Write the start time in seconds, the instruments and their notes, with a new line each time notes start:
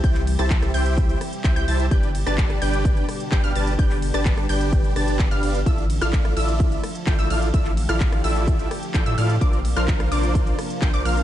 Already playing: analog synth pad C3 E3 G3 E4 G4
0.04 sub bass C2, supersaw synth E4 G4 C5 E5 G5, synth pluck G6, kick, closed hi-hat, ride
0.15 clap, closed hi-hat
0.27 open hi-hat, ride
0.39 sub bass C2, supersaw synth E4 G4 C5 E5 A5, synth pluck A6, cross-stick, closed hi-hat
0.50 kick, clap, closed hi-hat, ride
0.62 cross-stick, closed hi-hat
0.74 sub bass C2, supersaw synth E4 G4 C5 E5 G5, synth pluck G6, open hi-hat, ride
0.86 closed hi-hat
0.98 kick, closed hi-hat, ride
1.09 closed hi-hat
1.21 cross-stick, open hi-hat, ride
1.33 closed hi-hat
1.44 sub bass C2, supersaw synth E4 G4 C5 E5 G5, synth pluck G6, kick, clap, closed hi-hat, ride
1.56 sub bass C2, supersaw synth E4 G4 C5 E5 G5, synth pluck G6, closed hi-hat
1.68 sub bass C2, supersaw synth E4 G4 C5 E5 A5, synth pluck A6, open hi-hat, ride
1.80 closed hi-hat
1.91 sub bass G1, analog synth pad B2 D3 D4, supersaw synth D4 G4 B4 D5 G5, synth pluck G6, kick, closed hi-hat, ride
2.03 closed hi-hat
2.15 open hi-hat, ride
2.26 sub bass G1, supersaw synth D4 G4 B4 D5 A5, synth pluck A6, cross-stick, closed hi-hat
2.38 kick, clap, closed hi-hat, ride
2.50 cross-stick, closed hi-hat
2.62 sub bass G1, supersaw synth D4 G4 B4 D5 G5, synth pluck G6, open hi-hat, ride
2.73 closed hi-hat
2.85 kick, closed hi-hat, ride
2.97 closed hi-hat
3.09 cross-stick, open hi-hat, ride
3.20 closed hi-hat
3.32 sub bass G1, supersaw synth D4 G4 B4 D5 G5, synth pluck G6, kick, clap, closed hi-hat, ride
3.44 sub bass G1, supersaw synth D4 G4 B4 D5 F5, synth pluck F6, closed hi-hat
3.55 sub bass G1, supersaw synth D4 G4 B4 D5 A5, synth pluck A6, open hi-hat, ride
3.67 closed hi-hat
3.79 sub bass G1, supersaw synth D4 G4 B4 D5 G5, synth pluck G6, kick, closed hi-hat, ride
3.90 clap, open hi-hat
4.02 open hi-hat, ride
4.14 sub bass G1, supersaw synth D4 G4 B4 D5 A5, synth pluck A6, cross-stick, closed hi-hat
4.26 kick, clap, closed hi-hat, ride
4.38 cross-stick, closed hi-hat
4.49 sub bass G1, supersaw synth D4 G4 B4 D5 G5, synth pluck G6, open hi-hat, ride
4.61 closed hi-hat
4.73 kick, closed hi-hat, ride
4.84 closed hi-hat
4.96 sub bass G1, supersaw synth D4 G4 B4 D5 A5, synth pluck A6, cross-stick, open hi-hat, ride
5.08 closed hi-hat
5.19 kick, clap, closed hi-hat, ride
5.31 sub bass G1, supersaw synth D4 G4 B4 D5 F5, synth pluck F6, closed hi-hat
5.43 open hi-hat, ride
5.55 closed hi-hat
5.66 sub bass A1, analog synth pad F3 A3, supersaw synth E4 F4 A4 D5 E5, synth pluck E6, kick, closed hi-hat, ride
5.78 closed hi-hat
5.90 open hi-hat, ride
6.01 sub bass A1, supersaw synth E4 F4 A4 D5 F5, synth pluck F6, cross-stick, closed hi-hat
6.13 kick, clap, closed hi-hat, ride
6.25 cross-stick, closed hi-hat
6.37 sub bass A1, supersaw synth E4 F4 A4 D5 E5, synth pluck E6, open hi-hat, ride
6.48 closed hi-hat
6.60 kick, closed hi-hat, ride
6.72 closed hi-hat
6.84 cross-stick, open hi-hat, ride
6.95 closed hi-hat
7.07 sub bass A1, supersaw synth E4 F4 A4 D5 G5, synth pluck G6, kick, clap, closed hi-hat, ride
7.19 sub bass A1, supersaw synth E4 F4 A4 D5 E5, synth pluck E6, closed hi-hat
7.30 sub bass A1, supersaw synth E4 F4 A4 D5 F5, synth pluck F6, open hi-hat, ride
7.42 closed hi-hat
7.54 sub bass A1, supersaw synth E4 F4 A4 D5 E5, analog synth pad G4, synth pluck E6, kick, closed hi-hat, ride
7.65 clap, closed hi-hat
7.77 open hi-hat, ride
7.89 sub bass A1, supersaw synth E4 F4 A4 D5 F5, synth pluck F6, cross-stick, closed hi-hat
8.00 kick, clap, closed hi-hat, ride
8.12 cross-stick, closed hi-hat
8.24 sub bass A1, supersaw synth E4 F4 A4 D5 E5, synth pluck E6, open hi-hat, ride
8.36 closed hi-hat
8.48 kick, closed hi-hat, ride
8.59 closed hi-hat
8.71 cross-stick, open hi-hat, ride
8.83 closed hi-hat
8.94 sub bass A1, supersaw synth E4 F4 A4 D5 G5, synth pluck G6, kick, clap, closed hi-hat, ride
9.06 sub bass A2, supersaw synth E4 F4 A4 D5 E5, synth pluck E6, closed hi-hat
9.18 sub bass A2, supersaw synth E4 F4 A4 D5 F5, synth pluck F6, open hi-hat, ride
9.30 closed hi-hat
9.41 sub bass A#1, analog synth pad C3 A#3 D4 F4, supersaw synth D4 F4 A#4 C5 D5, synth pluck D6, kick, closed hi-hat, ride
9.53 closed hi-hat
9.65 open hi-hat, ride
9.76 sub bass A#1, supersaw synth D4 F4 A#4 C5 F5, synth pluck F6, cross-stick, closed hi-hat
9.88 kick, clap, closed hi-hat, ride
10.00 cross-stick, closed hi-hat
10.12 sub bass A#1, supersaw synth D4 F4 A#4 C5 D5, synth pluck D6, open hi-hat, ride
10.23 closed hi-hat
10.35 kick, closed hi-hat, ride
10.47 closed hi-hat
10.59 cross-stick, open hi-hat, ride
10.70 closed hi-hat
10.82 sub bass A#1, supersaw synth D4 F4 A#4 C5 G5, synth pluck G6, kick, clap, closed hi-hat, ride
10.94 sub bass A#1, supersaw synth D4 F4 A#4 C5 D5, synth pluck D6, closed hi-hat
11.05 sub bass A#1, supersaw synth D4 F4 A#4 C5 F5, synth pluck F6, open hi-hat, ride
11.17 closed hi-hat